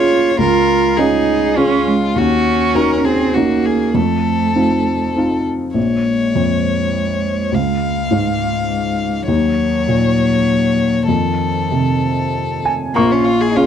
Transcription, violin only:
0.00 0.39 C#5 medium
0.40 0.98 A#4 medium
0.96 1.59 G#4 medium
1.57 2.19 F4 medium
2.18 2.77 F#4 medium
2.75 3.06 A#4 medium
3.05 3.35 G#4 soft
3.34 3.67 F#4 soft
3.65 3.97 G#4 soft
3.95 5.46 A4 soft
5.77 7.56 C#5 soft
7.54 9.27 F5 soft
9.28 11.04 C#5 soft
11.07 12.71 A4 soft
12.95 13.13 A#3 medium
13.11 13.26 C#4 medium
13.25 13.42 F4 medium
13.41 13.58 G#4 medium
13.56 13.66 F4 medium

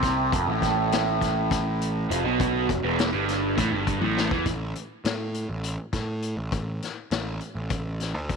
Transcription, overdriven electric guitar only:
0.00 0.32 C3 loud
0.33 0.47 F2 loud
0.48 2.09 A2 loud
2.10 2.24 F2 loud
2.25 2.68 B2 loud
2.70 2.83 F#2 medium
2.84 3.12 E2 loud
3.13 3.56 G2 loud
3.57 3.71 A2 loud
3.71 4.00 G2 loud
4.01 4.30 A2 medium
4.32 4.46 E3 loud

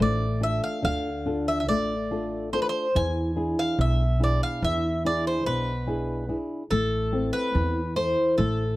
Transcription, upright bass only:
0.00 0.59 A1 medium
0.84 1.69 D2 medium
1.69 2.57 A1 medium
2.95 3.54 E2 medium
3.79 4.37 B1 medium
4.62 5.45 E2 loud
5.45 6.33 B1 medium
6.71 7.30 A1 medium
7.55 8.13 E2 medium
8.38 8.76 A1 medium

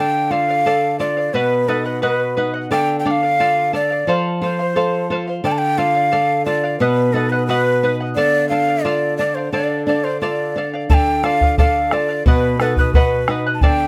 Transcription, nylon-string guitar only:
0.00 1.30 D3 medium
0.30 0.64 F4 soft
0.66 0.99 A4 soft
1.00 1.33 F4 soft
1.34 2.67 B2 medium
1.68 2.01 D#4 soft
2.03 2.36 F#4 soft
2.37 2.70 D#4 soft
2.71 4.03 D3 medium
3.05 3.38 D4 soft
3.40 3.73 F4 soft
3.73 4.06 D4 soft
4.07 5.40 F3 medium
4.41 4.75 F4 soft
4.76 5.09 A4 soft
5.10 5.43 F4 soft
5.44 6.77 D3 medium
5.78 6.11 F4 soft
6.13 6.46 A4 soft
6.46 6.80 F4 soft
6.80 8.13 B2 medium
7.14 7.48 D#4 soft
7.49 7.82 F#4 soft
7.83 8.16 D#4 soft
8.16 9.49 D3 medium
8.51 8.84 D4 soft
8.85 9.18 F4 medium
9.19 9.53 D4 soft
9.53 10.86 D3 medium
9.87 10.20 D4 soft
10.22 10.55 F4 soft
10.56 10.89 D4 soft
10.90 12.22 D3 medium
11.23 11.57 F4 soft
11.59 11.92 A4 soft
11.92 12.26 F4 soft
12.26 13.58 B2 medium
12.59 12.93 D#4 soft
12.95 13.28 F#4 soft
13.28 13.61 D#4 soft
13.62 13.88 D3 medium

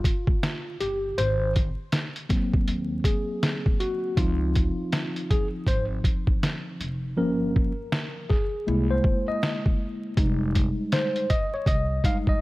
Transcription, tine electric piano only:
0.00 0.76 F4 medium
0.81 1.19 G4 medium
1.18 1.53 C5 loud
2.29 4.13 F#3 medium
2.29 4.13 A#3 medium
2.29 4.14 C4 medium
3.04 3.82 G#4 medium
3.80 4.19 F#4 medium
4.17 7.13 F3 medium
4.17 7.13 C4 soft
4.17 7.14 D#4 medium
4.17 5.33 F4 medium
5.30 5.47 G#4 loud
5.68 5.85 C5 loud
7.17 7.71 F3 medium
7.17 7.71 A#3 medium
7.17 7.71 C#4 medium
7.17 8.33 A#4 medium
8.30 8.87 G#4 medium
8.67 10.13 G#3 medium
8.67 10.13 A#3 soft
8.67 10.14 E4 medium
8.90 9.26 C5 medium
9.28 9.63 D#5 medium
10.17 11.26 G3 medium
10.17 11.26 G#3 medium
10.17 11.26 D#4 medium
10.93 11.31 C5 medium
11.30 11.54 D#5 loud
11.54 11.68 C#5 medium
11.68 12.06 D#5 loud
12.04 12.38 G3 soft
12.04 12.39 G#3 soft
12.04 12.39 D#4 medium
12.04 12.16 F5 loud
12.29 12.41 D#5 loud

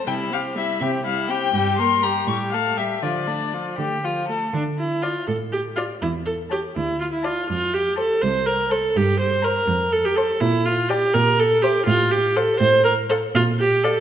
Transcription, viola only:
0.07 0.32 G3 soft
0.31 0.57 C4 medium
0.55 0.82 G3 soft
0.81 1.04 C4 medium
1.05 1.30 G3 medium
1.28 1.53 C4 medium
1.54 1.80 G3 medium
1.79 2.04 A#3 medium
2.03 2.26 G3 medium
2.27 2.55 G3 medium
2.53 2.78 A3 soft
2.77 3.02 G3 soft
3.03 3.29 F3 soft
3.27 3.55 A3 soft
3.53 3.81 F3 soft
3.79 4.02 A3 soft
4.03 4.31 F3 soft
4.29 4.53 A3 soft
4.54 4.62 D4 medium
4.78 5.04 E4 medium
5.02 5.27 F4 medium
5.28 5.36 A4 medium
5.52 5.60 G4 medium
5.76 5.84 F4 medium
6.02 6.10 E4 medium
6.26 6.34 A4 medium
6.51 6.59 G4 medium
6.76 6.99 E4 medium
7.00 7.05 F4 medium
7.13 7.27 E4 medium
7.25 7.49 F4 medium
7.49 7.75 F4 medium
7.74 7.98 G4 medium
7.99 8.23 A4 medium
8.21 8.48 C5 loud
8.47 8.73 A#4 loud
8.71 8.98 A4 medium
8.97 9.19 G4 loud
9.20 9.46 C5 loud
9.44 9.94 A#4 loud
9.93 10.06 A4 loud
10.05 10.17 G4 medium
10.16 10.42 A4 medium
10.40 10.67 E4 loud
10.65 10.91 F4 medium
10.89 11.16 G4 loud
11.14 11.41 A#4 loud
11.40 11.64 A4 loud
11.62 11.86 G4 loud
11.86 12.13 F4 loud
12.11 12.37 G4 loud
12.36 12.59 A4 loud
12.60 12.84 C5 loud
12.84 12.92 A#4 loud
13.10 13.18 A4 loud
13.35 13.43 F4 loud
13.59 13.85 G4 loud
13.84 14.00 A4 loud

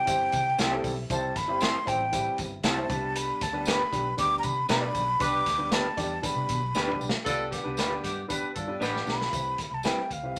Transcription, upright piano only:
0.05 0.40 G3 medium
0.05 0.40 C4 medium
0.05 0.40 E4 medium
0.05 0.40 G4 medium
0.05 0.41 C5 medium
0.71 0.92 G3 medium
0.71 0.92 C4 medium
0.71 0.92 E4 medium
0.71 0.92 G4 medium
0.71 0.92 A4 loud
1.10 1.30 G3 medium
1.10 1.30 C4 medium
1.10 1.30 E4 medium
1.10 1.30 G4 medium
1.10 1.31 C5 medium
1.48 1.68 G3 medium
1.48 1.68 C4 medium
1.48 1.69 E4 medium
1.48 1.69 G4 medium
1.48 1.69 C5 medium
1.85 1.99 G3 medium
1.85 2.00 C4 medium
1.85 2.00 E4 medium
1.85 2.00 G4 medium
1.85 2.00 C5 medium
2.12 2.46 G3 medium
2.12 2.46 C4 medium
2.12 2.46 E4 medium
2.12 2.46 G4 medium
2.12 2.46 B4 medium
2.77 2.87 G3 medium
2.77 2.90 C4 medium
2.77 2.90 E4 medium
2.77 2.88 G4 medium
2.77 2.90 C5 medium
2.89 3.41 G3 medium
2.89 3.40 B3 medium
2.89 3.41 D4 medium
2.89 3.41 G4 medium
2.89 3.41 B4 medium
3.53 3.73 G3 medium
3.53 3.73 B3 medium
3.53 3.73 D4 medium
3.53 3.73 G4 medium
3.53 3.74 B4 medium
3.92 4.05 G3 medium
3.92 4.05 B3 medium
3.92 4.06 D4 medium
3.92 4.06 G4 medium
3.92 4.06 B4 medium
4.17 4.51 G3 medium
4.17 4.51 B3 medium
4.17 4.51 D4 medium
4.17 4.51 G4 medium
4.17 4.51 B4 medium
4.80 5.01 G3 medium
4.80 5.01 B3 medium
4.80 5.01 D4 medium
4.80 5.01 G4 medium
4.80 5.01 D5 medium
5.19 5.40 G3 medium
5.19 5.40 B3 medium
5.19 5.40 D4 medium
5.19 5.40 G4 medium
5.19 5.41 B4 medium
5.58 5.78 G3 medium
5.58 5.79 B3 medium
5.58 5.79 D4 medium
5.58 5.79 G4 medium
5.58 5.79 B4 medium
5.97 6.10 G3 medium
5.97 6.11 B3 medium
5.97 6.11 D4 medium
5.97 6.11 G4 medium
5.97 6.11 D5 medium
6.22 6.56 G3 medium
6.22 6.56 B3 medium
6.22 6.56 D4 medium
6.22 6.57 G4 medium
6.22 6.57 B4 medium
6.87 7.08 G3 medium
6.87 7.08 B3 medium
6.87 7.08 D4 medium
6.87 7.08 G4 medium
6.87 7.08 B4 medium
7.25 7.46 B3 medium
7.25 7.46 D4 medium
7.25 7.46 G4 medium
7.25 7.46 B4 loud
7.64 7.78 B3 medium
7.64 7.78 D4 medium
7.64 7.78 G4 medium
7.64 7.78 B4 loud
7.88 8.10 B3 medium
7.88 8.10 D4 medium
7.88 8.10 G4 medium
7.88 8.10 B4 loud
8.28 8.49 B3 medium
8.28 8.49 D4 medium
8.28 8.49 G4 medium
8.28 8.49 B4 medium
8.67 8.88 B3 medium
8.67 8.88 D4 medium
8.67 8.88 G4 medium
8.67 8.88 B4 medium
9.06 9.20 B3 medium
9.06 9.20 D4 medium
9.06 9.21 G4 medium
9.06 9.21 B4 medium
9.31 9.59 C4 medium
9.31 9.59 E4 medium
9.31 9.59 G4 medium
9.31 9.60 B4 medium
9.84 10.05 C4 medium
9.84 10.05 E4 medium
9.84 10.05 G4 medium
9.84 10.05 B4 medium
10.23 10.36 C4 medium
10.23 10.37 E4 medium
10.23 10.37 G4 medium
10.23 10.37 B4 medium

